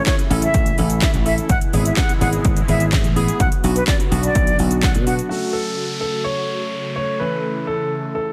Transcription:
Already playing: C#3 E3 A3 C#4 E4 A4
0.06 C#5, kick, snare, clap, closed hi-hat, shaker
0.19 closed hi-hat, shaker
0.30 A1 C#4 E4 A4, open hi-hat, shaker
0.42 E5, closed hi-hat, shaker
0.54 A1, kick, closed hi-hat, shaker
0.66 closed hi-hat, shaker
0.78 A1 C#4 E4 A4, open hi-hat, shaker
0.90 closed hi-hat, shaker
1.02 E5, kick, snare, clap, closed hi-hat, shaker
1.14 A1, closed hi-hat, shaker
1.25 C#4 E4 A4 E5, open hi-hat, shaker
1.38 closed hi-hat, shaker
1.49 G#1 B2 E3 G#3 F#5, kick, closed hi-hat, shaker
1.61 closed hi-hat, shaker
1.73 G#1 B3 E4 G#4, open hi-hat, shaker
1.85 E5, closed hi-hat, shaker
1.97 F#5, kick, snare, clap, closed hi-hat, shaker
2.09 closed hi-hat, shaker
2.21 G#1 B3 E4 G#4 F#5, open hi-hat, shaker
2.33 closed hi-hat, shaker
2.45 G#1, kick, closed hi-hat, shaker
2.57 closed hi-hat, shaker
2.68 G#1 B3 E4 G#4 E5, open hi-hat, shaker
2.80 closed hi-hat, shaker
2.92 kick, snare, clap, closed hi-hat, shaker
3.04 A1, closed hi-hat, shaker
3.16 B3 E4 G#4, open hi-hat, shaker
3.28 closed hi-hat, shaker
3.40 B1 D3 F#3 B3 F#4 F#5, kick, closed hi-hat, shaker
3.52 closed hi-hat, shaker
3.64 B1 B3 D4 F#4, open hi-hat, shaker
3.76 B4, closed hi-hat, shaker
3.87 D5, kick, snare, clap, closed hi-hat, shaker
4.00 closed hi-hat, shaker
4.11 B1 B3 D4 F#4, open hi-hat, shaker
4.23 D5, closed hi-hat, shaker
4.35 B1, kick, closed hi-hat, shaker
4.47 closed hi-hat, shaker
4.59 B1 B3 D4 F#4, open hi-hat, shaker
4.71 closed hi-hat, shaker
4.83 F#5, kick, snare, clap, closed hi-hat, shaker
4.95 B2, closed hi-hat, shaker
5.06 B3 D4 F#4 F#5, open hi-hat, shaker
5.19 closed hi-hat, shaker
5.29 C#3 F#3 A3 C#4 F#4 A4, downlifter
5.53 A4
6.01 A4
6.24 C#5
6.96 C#5
7.20 E3 A3 C#4 E4 A4 B4
7.67 A4
8.15 A4

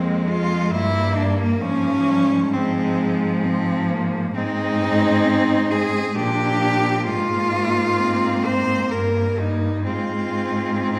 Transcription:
Already playing: F2 G#3 A#3 C4
0.28 G#3 F4
0.71 G2 G3 A#3 E4
1.16 D4
1.39 A#3
1.61 G#2 F3 C#4
2.07 G3
2.53 F3 G#3 C4
3.45 C4
3.90 A#3
4.34 G#2 G#3 C4 D#4
5.25 C4
5.71 G#3 G#4
6.15 A#2 F3 D4 G4
7.04 G#2 A#3 F4
7.08 G#3
7.52 A#3
8.00 C4
8.45 C5
8.91 G2 A#3 A#4
9.39 D#4
9.85 G#2 G#3 C4 F4
10.80 C4

